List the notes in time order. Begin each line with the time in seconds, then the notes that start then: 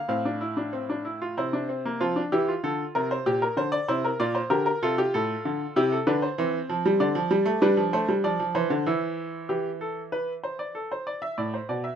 0.08 A2 C4 F5
0.25 D4
0.41 E4
0.57 D4
0.73 C4
0.90 D4
1.05 E4
1.22 F4
1.37 C3 E4 C5
1.53 D4
1.69 C4
1.85 A#3
2.00 F3 C4 F4
2.16 D4
2.32 E3 E4 G4
2.48 F4
2.64 D3 A4
2.95 C3 A#4
3.11 C5
3.26 A#2 G4
3.42 A#4
3.57 D3 C5
3.72 D5
3.88 C3 E4 C5
4.04 A#4
4.20 A#2 F4 D5
4.35 C5
4.50 D3 G4 A#4
4.66 A#4
4.83 C3 F4 A4
4.98 G4
5.14 A2 A4
5.45 D3
5.76 C3 E4 G4
5.92 A4
6.07 D3 D4 B4
6.22 C5
6.38 E3 C4
6.69 F3
6.86 G3
7.00 D3 D5
7.15 F3
7.31 G3
7.45 A3
7.62 G3 D4 B4
7.77 F3
7.93 A3 C5
8.09 G3
8.24 F3 D5
8.40 F3
8.55 E3 C5
8.70 D3
8.86 E3 E4
9.49 E3 G4
9.81 A4
10.12 B4
10.44 C5
10.59 D5
10.75 A4
10.92 C5
11.07 D5
11.22 E5
11.38 A2 D5
11.54 C5
11.69 B2 D5
11.84 E5